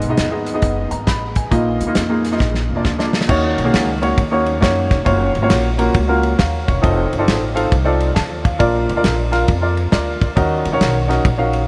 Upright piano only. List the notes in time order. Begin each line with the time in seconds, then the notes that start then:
Already playing: G#2
0.09 B3 D#4 G#4 D#5
0.31 B3 D#4 G#4 D#5
0.54 B3 D#4 G#4 D#5
0.91 A#5
1.07 B5
1.36 G#5
1.51 A#2 A#3 D#4 F4 D#5
1.87 A#3 D#4 F4 D#5
2.09 A#3 D#4 F4 G#4
2.32 A#3 D#4 F4 D#5
2.40 A#2
2.76 A#3 D4 F4 D5
2.99 A#3 D4 F4 D5
3.28 D#3 A#3 C#4 D#4 F#4 C#5
3.64 A#3 C#4 D#4 F#4 G#4
4.01 A#3 C#4 D#4 F#4 C#5
4.31 A#3 C#4 D#4 F#4 C#5
4.61 A#3 C#4 D#4 F#4 C#5
5.05 A#3 C#4 F4 F#4 C#5
5.42 A#3 C#4 F4 F#4 C#5
5.78 A#3 C#4 F4 F#4 A#4
6.08 A#3 C#4 F4 F#4 A#4
6.38 F5
6.68 C#5
6.81 C4 D#4 F4 A4 D#5
7.18 C4 D#4 F4 A4 D5
7.54 C4 D#4 F4 A4 F5
7.84 C4 D#4 F4 A4 D5
8.15 A5
8.44 F5
8.59 A#2 F4 A#4 D5
8.96 F4 A#4 D5
9.32 F4 A#4 F5
9.61 F4 A#4 D5
9.91 F4 A#4 D5
10.36 D#3 C#4 D#4 F#4 A#4 D#5
10.72 C#4 D#4 F#4 A#4 C#5
11.08 C#4 D#4 F#4 A#4 D#5
11.38 C#4 D#4 F#4 A#4 F5